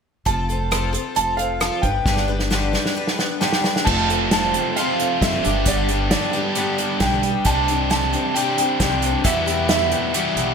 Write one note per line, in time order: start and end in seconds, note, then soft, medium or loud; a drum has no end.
0.25 0.95 F1 medium
0.25 0.49 F3 medium
0.25 0.49 C4 medium
0.25 0.49 F4 medium
0.25 0.48 A4 medium
0.25 1.12 A5 medium
0.25 kick medium
0.25 closed hi-hat medium
0.49 0.70 C4 soft
0.49 0.71 F4 soft
0.49 0.71 A4 soft
0.49 closed hi-hat medium
0.71 0.94 F3 medium
0.71 0.94 C4 medium
0.71 0.93 F4 medium
0.71 0.92 A4 medium
0.71 cross-stick medium
0.71 closed hi-hat medium
0.93 1.15 C4 soft
0.93 1.15 F4 soft
0.93 1.15 A4 soft
0.93 closed hi-hat soft
1.15 1.68 F1 medium
1.15 1.38 F3 soft
1.15 1.38 C4 soft
1.15 1.37 F4 medium
1.15 1.36 A4 medium
1.15 1.37 A5 medium
1.15 closed hi-hat medium
1.37 1.60 C4 soft
1.37 1.61 F4 soft
1.37 1.61 A4 soft
1.37 1.84 F5 medium
1.37 closed hi-hat medium
1.60 1.84 F3 medium
1.60 1.84 C4 medium
1.60 1.84 F4 medium
1.60 1.83 A4 medium
1.60 cross-stick medium
1.60 closed hi-hat medium
1.82 2.01 G1 medium
1.82 2.06 G3 soft
1.82 2.06 B3 soft
1.82 2.06 D4 soft
1.82 2.06 B4 soft
1.82 3.14 G5 medium
1.82 kick medium
1.82 closed hi-hat medium
2.06 2.74 G1 medium
2.06 2.29 G2 medium
2.06 2.29 D3 medium
2.06 2.29 G3 medium
2.06 2.28 B3 medium
2.06 2.28 D4 medium
2.06 2.27 B4 medium
2.06 kick loud
2.06 snare soft
2.17 snare soft
2.28 2.51 G3 soft
2.28 2.50 B3 soft
2.28 2.50 D4 soft
2.28 2.51 B4 soft
2.39 snare soft
2.50 2.73 G2 medium
2.50 2.74 D3 medium
2.50 2.74 G3 medium
2.50 2.74 B3 medium
2.50 2.73 D4 medium
2.50 2.72 B4 medium
2.50 snare medium
2.73 2.94 G3 soft
2.73 2.95 B3 soft
2.73 2.95 D4 soft
2.73 2.96 B4 soft
2.73 snare medium
2.86 snare medium
2.95 3.18 G3 medium
2.95 3.19 B3 medium
2.95 3.18 D4 medium
2.95 3.17 B4 medium
3.07 snare medium
3.18 3.40 G3 soft
3.18 3.41 B3 soft
3.18 3.41 D4 soft
3.18 3.41 B4 soft
3.18 snare medium
3.40 3.64 G2 medium
3.40 3.64 D3 medium
3.40 3.64 G3 medium
3.40 3.64 B3 medium
3.40 3.64 D4 medium
3.40 3.63 B4 medium
3.40 3.83 G5 medium
3.40 snare medium
3.53 snare medium
3.64 3.86 G3 soft
3.64 3.87 B3 soft
3.64 3.87 D4 soft
3.64 3.86 B4 soft
3.64 snare medium
3.76 snare medium
3.85 4.55 F1 medium
3.85 4.74 F2 medium
3.85 4.75 C3 medium
3.85 4.09 F3 medium
3.85 4.75 A3 medium
3.85 4.09 C4 medium
3.85 4.09 F4 medium
3.85 4.08 A4 medium
3.85 4.31 A5 medium
3.85 kick loud
3.85 crash medium
4.09 4.32 C4 soft
4.09 4.32 F4 soft
4.09 4.32 A4 medium
4.09 closed hi-hat medium
4.31 4.54 F3 medium
4.31 4.55 C4 medium
4.31 4.55 F4 medium
4.31 4.54 A4 medium
4.31 4.78 A5 medium
4.31 snare loud
4.31 closed hi-hat medium
4.54 4.77 C4 soft
4.54 4.77 F4 soft
4.54 4.77 A4 soft
4.54 closed hi-hat medium
4.76 5.42 F2 medium
4.76 5.43 C3 medium
4.76 5.00 F3 medium
4.76 5.43 A3 medium
4.76 5.00 C4 medium
4.76 5.00 F4 medium
4.76 4.98 A4 medium
4.76 5.23 F5 medium
4.76 closed hi-hat medium
4.99 5.22 C4 soft
4.99 5.22 F4 soft
4.99 5.22 A4 soft
4.99 closed hi-hat medium
5.22 5.39 F#1 medium
5.22 5.44 F3 medium
5.22 5.45 C4 medium
5.22 5.45 F4 medium
5.22 5.44 A4 medium
5.22 5.64 E5 medium
5.22 kick medium
5.22 snare medium
5.22 closed hi-hat medium
5.43 6.13 G1 medium
5.43 6.32 G2 medium
5.43 6.32 D3 medium
5.43 5.66 B3 soft
5.43 5.67 D4 soft
5.43 5.66 G4 soft
5.43 closed hi-hat medium
5.47 5.66 G3 soft
5.66 5.89 G2 medium
5.66 5.89 D3 medium
5.66 5.89 G3 medium
5.66 5.89 B3 medium
5.66 5.88 D4 medium
5.66 5.88 G4 medium
5.66 6.09 D5 medium
5.66 kick loud
5.66 closed hi-hat medium
5.89 6.10 G3 soft
5.89 6.11 B3 soft
5.89 6.11 D4 soft
5.89 6.11 G4 soft
5.89 closed hi-hat medium
6.11 6.34 G3 medium
6.11 6.34 B3 medium
6.11 6.33 D4 medium
6.11 6.32 G4 medium
6.11 7.03 D5 medium
6.11 snare loud
6.11 closed hi-hat medium
6.33 7.23 G2 medium
6.33 7.23 D3 medium
6.33 6.55 G3 soft
6.33 6.55 B3 soft
6.33 6.56 D4 soft
6.33 6.56 G4 soft
6.33 closed hi-hat soft
6.55 6.78 G2 medium
6.55 6.78 D3 medium
6.55 6.79 G3 medium
6.55 6.78 B3 medium
6.55 6.77 D4 medium
6.55 6.77 G4 medium
6.55 closed hi-hat medium
6.78 6.99 G3 soft
6.78 6.99 B3 soft
6.78 7.00 D4 medium
6.78 7.01 G4 medium
6.78 closed hi-hat medium
7.00 7.35 B1 medium
7.00 7.23 G3 medium
7.00 7.23 B3 medium
7.00 7.23 D4 medium
7.00 7.22 G4 medium
7.00 7.47 G5 medium
7.00 kick medium
7.00 snare medium
7.00 closed hi-hat medium
7.23 7.45 G3 soft
7.23 7.46 B3 soft
7.23 7.46 D4 soft
7.23 7.46 G4 medium
7.23 closed hi-hat medium
7.45 8.14 C2 medium
7.45 7.68 C3 medium
7.45 7.69 G3 medium
7.45 7.69 C4 medium
7.45 7.69 D4 medium
7.45 7.68 G4 medium
7.45 7.88 A5 medium
7.45 kick loud
7.45 closed hi-hat medium
7.68 7.89 C4 soft
7.68 7.90 D4 soft
7.68 7.90 G4 soft
7.68 closed hi-hat medium
7.90 8.13 G3 medium
7.90 8.13 C4 medium
7.90 8.12 D4 medium
7.90 8.12 G4 medium
7.90 8.37 A5 medium
7.90 snare loud
7.90 closed hi-hat medium
8.13 8.35 C4 soft
8.13 8.35 D4 soft
8.13 8.35 G4 soft
8.13 closed hi-hat soft
8.34 8.58 C3 medium
8.34 8.58 G3 medium
8.34 8.58 C4 medium
8.34 8.58 D4 medium
8.34 8.57 G4 medium
8.34 8.78 G5 medium
8.34 closed hi-hat medium
8.58 8.80 C4 soft
8.58 8.81 D4 soft
8.58 8.80 G4 soft
8.58 closed hi-hat medium
8.80 9.14 C2 medium
8.80 9.03 G3 medium
8.80 9.03 C4 medium
8.80 9.02 D4 medium
8.80 9.01 G4 medium
8.80 9.26 G5 medium
8.80 kick medium
8.80 snare medium
8.80 closed hi-hat medium
9.02 9.24 C4 soft
9.02 9.25 D4 soft
9.02 9.24 G4 medium
9.02 closed hi-hat medium
9.24 10.12 E2 medium
9.24 9.93 E2 medium
9.24 10.13 B2 medium
9.24 9.47 E3 medium
9.24 9.47 G3 medium
9.24 9.47 B3 medium
9.24 10.14 E4 medium
9.24 9.46 F#4 medium
9.24 9.45 G4 medium
9.24 9.67 E5 medium
9.24 kick loud
9.24 closed hi-hat medium
9.46 9.68 B3 soft
9.46 9.69 F#4 soft
9.46 9.69 G4 soft
9.46 closed hi-hat medium
9.68 9.91 G3 medium
9.68 9.92 B3 medium
9.68 9.91 F#4 soft
9.68 9.90 G4 medium
9.68 10.54 E5 medium
9.68 snare loud
9.68 closed hi-hat medium
9.92 10.14 B3 soft
9.92 10.14 F#4 soft
9.92 10.14 G4 soft
9.92 closed hi-hat soft
10.13 10.54 E2 medium
10.13 10.54 B2 medium
10.13 10.37 E3 medium
10.13 10.37 G3 medium
10.13 10.37 B3 medium
10.13 10.54 E4 medium
10.13 10.37 F#4 medium
10.13 10.36 G4 medium
10.13 closed hi-hat medium
10.36 10.54 B1 medium
10.36 10.54 B3 soft
10.36 10.54 F#4 medium
10.36 10.54 G4 medium
10.36 closed hi-hat medium